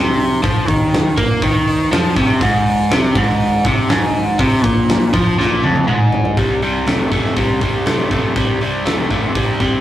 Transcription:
Already playing: fingered electric bass C2, overdriven electric guitar C3
0.20 open hi-hat
0.43 fingered electric bass F2, overdriven electric guitar F3, kick, open hi-hat
0.68 fingered electric bass D#2, overdriven electric guitar D#3, kick, open hi-hat
0.93 snare, open hi-hat
1.18 fingered electric bass A#2, overdriven electric guitar A#3, kick, open hi-hat
1.42 fingered electric bass D#2, overdriven electric guitar D#3, kick, open hi-hat
1.67 open hi-hat
1.91 fingered electric bass F2, overdriven electric guitar F3, snare, open hi-hat
2.17 fingered electric bass C2, overdriven electric guitar C3, kick, open hi-hat
2.41 fingered electric bass G#1, overdriven electric guitar G#2, kick, open hi-hat
2.66 open hi-hat
2.90 fingered electric bass C2, overdriven electric guitar C3, snare, open hi-hat
3.15 fingered electric bass G#1, overdriven electric guitar G#2, kick, open hi-hat
3.29 snare
3.40 open hi-hat
3.65 fingered electric bass C2, overdriven electric guitar C3, kick, open hi-hat
3.89 fingered electric bass G#1, overdriven electric guitar G#2, snare, open hi-hat
4.14 open hi-hat
4.39 fingered electric bass C2, overdriven electric guitar C3, kick, open hi-hat
4.64 fingered electric bass A#1, overdriven electric guitar A#2, kick, open hi-hat
4.89 snare, open hi-hat
5.14 fingered electric bass F2, overdriven electric guitar F3, kick, open hi-hat
5.38 fingered electric bass A#1, overdriven electric guitar A#2, snare
5.63 fingered electric bass F1, overdriven electric guitar F2, high tom
5.76 high tom
5.87 fingered electric bass G#1, overdriven electric guitar G#2, mid tom
6.13 floor tom
6.25 floor tom
6.37 fingered electric bass C2, overdriven electric guitar C3 G3, kick, open hi-hat
6.62 fingered electric bass C2, overdriven electric guitar C3 G3, open hi-hat
6.87 fingered electric bass C2, overdriven electric guitar C3 A3, snare, open hi-hat
7.12 overdriven electric guitar C3 A3, kick, open hi-hat
7.26 snare
7.37 fingered electric bass C2, overdriven electric guitar C3 G3, kick, open hi-hat
7.61 overdriven electric guitar C3 G3, kick, open hi-hat
7.86 fingered electric bass C3, overdriven electric guitar C3 A3, snare, open hi-hat
8.11 fingered electric bass C2, overdriven electric guitar C3 A3, kick, open hi-hat
8.36 fingered electric bass C2, overdriven electric guitar C3 G3, kick, open hi-hat
8.61 fingered electric bass C2, overdriven electric guitar C3 G3, open hi-hat
8.85 fingered electric bass C2, overdriven electric guitar C3 A3, snare, open hi-hat
9.10 overdriven electric guitar C3 A3, kick, open hi-hat
9.35 fingered electric bass C2, overdriven electric guitar C3 G3, kick, open hi-hat
9.60 overdriven electric guitar C3 G3, kick, open hi-hat

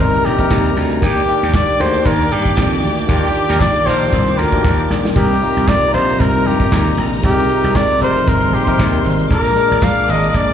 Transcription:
Already playing: tine electric piano C3 G3 D#4 A4 A#4, string section C3 G3 A#3 D#4, violin section A#4 A#5
0.00 slap bass G1, flugelhorn A#4
0.13 closed hi-hat, shaker
0.25 slap bass A#1, flugelhorn G4, closed hi-hat
0.38 tine electric piano C3 G3 D#4 A#4, kick, closed hi-hat, shaker
0.50 slap bass D#2, kick, snare, clap, shaker
0.65 closed hi-hat, shaker
0.77 slap bass D2, open hi-hat
0.91 closed hi-hat, shaker
1.02 slap bass D#2, tine electric piano D#3 A#3 D4 G4, string section D#3 D4 G4, flugelhorn G4, violin section D5 D6, kick, closed hi-hat, shaker
1.17 snare, closed hi-hat, shaker
1.28 tine electric piano D#3 A#3 D4 G4, closed hi-hat
1.43 slap bass D#2, closed hi-hat, shaker
1.53 flugelhorn D5, kick, snare, clap, shaker
1.68 closed hi-hat, shaker
1.79 slap bass D2, tine electric piano D#3 A#3 D4 G4, flugelhorn C5, closed hi-hat, shaker
1.94 closed hi-hat, shaker
2.05 slap bass D#2, flugelhorn A#4, kick, closed hi-hat, shaker
2.19 closed hi-hat, shaker
2.31 slap bass G2, flugelhorn G4, closed hi-hat
2.45 kick, closed hi-hat, shaker
2.56 slap bass F2, kick, snare, clap, shaker
2.71 closed hi-hat, shaker
2.83 slap bass D2, open hi-hat
2.97 closed hi-hat, shaker
3.08 slap bass D#2, tine electric piano D#3 A#3 D4 F4, flugelhorn G4, kick, closed hi-hat, shaker
3.23 snare, closed hi-hat, shaker
3.35 closed hi-hat, shaker
3.49 slap bass D#2, horn section A#3 D#4 G4 A#4, closed hi-hat, shaker
3.59 flugelhorn D5, kick, snare, clap, shaker
3.75 closed hi-hat, shaker
3.86 slap bass A#1, tine electric piano D#3 A#3 D4 F4, horn section A#3 D#4 G4 A#4, flugelhorn C5, open hi-hat
4.01 closed hi-hat, shaker
4.12 slap bass C2, kick, closed hi-hat, shaker
4.26 closed hi-hat, shaker
4.38 slap bass D2, flugelhorn A#4, closed hi-hat
4.52 tine electric piano D#3 A#3 D4 G4, kick, closed hi-hat, shaker
4.63 slap bass D#2, kick, snare, shaker
4.79 shaker
4.89 slap bass A#1, snare, shaker
5.05 snare, shaker
5.15 slap bass C2, tine electric piano C3 G3 D#4 A#4, string section C3 G3 D#4, flugelhorn G4, violin section A#4 A#5, kick, closed hi-hat, shaker
5.31 snare, shaker
5.41 tine electric piano C3 G3 D#4 F4, closed hi-hat
5.57 slap bass C2, closed hi-hat, shaker
5.67 flugelhorn D5, kick, snare, clap, shaker
5.83 shaker
5.93 slap bass A#1, tine electric piano C3 G3 D#4 F4, flugelhorn C5, closed hi-hat, shaker
6.09 closed hi-hat, shaker
6.20 slap bass C2, flugelhorn A#4, kick, closed hi-hat, shaker
6.35 shaker
6.46 slap bass G2, flugelhorn G4, closed hi-hat
6.59 kick, closed hi-hat, shaker
6.71 slap bass D#2, kick, snare, clap, shaker
6.86 closed hi-hat, shaker
6.97 slap bass A#1, open hi-hat
7.12 closed hi-hat, shaker
7.23 slap bass C2, tine electric piano C3 G3 D#4 G#4, flugelhorn G4, kick, closed hi-hat, shaker
7.31 tine electric piano A#4
7.38 snare, closed hi-hat, shaker
7.49 closed hi-hat
7.64 slap bass C2, closed hi-hat, shaker
7.74 flugelhorn D5, kick, snare, clap, shaker
7.90 closed hi-hat, shaker
8.01 slap bass F1, tine electric piano C3 G3 D#4 A#4, flugelhorn C5, closed hi-hat, shaker
8.16 closed hi-hat, shaker
8.27 slap bass G1, flugelhorn A#4, violin section C5 C6, kick, closed hi-hat, shaker
8.41 closed hi-hat, shaker
8.53 slap bass A#1, flugelhorn G4, closed hi-hat
8.66 tine electric piano C3 G3 D#4 A#4, kick, closed hi-hat, shaker
8.78 slap bass D#2, kick, snare, clap, shaker
8.93 closed hi-hat, shaker
9.05 slap bass G#1, open hi-hat
9.19 closed hi-hat, shaker
9.30 slap bass A#1, tine electric piano A#2 G#3 D4 A#4, string section G#3 A#3 D4, flugelhorn A#4, violin section D5 D6, kick, closed hi-hat, shaker
9.45 snare, closed hi-hat, shaker
9.55 tine electric piano A#2 G#3 D4 A#4, closed hi-hat
9.71 slap bass A#1, closed hi-hat, shaker
9.81 flugelhorn F5, kick, snare, clap, shaker
9.97 closed hi-hat, shaker
10.08 slap bass G#1, tine electric piano A#2 G#3 D4 G#4, flugelhorn D#5, closed hi-hat, shaker
10.15 tine electric piano A#4
10.23 closed hi-hat, shaker
10.28 flugelhorn D#5
10.34 slap bass A#1, flugelhorn D5, kick, closed hi-hat, shaker
10.49 shaker

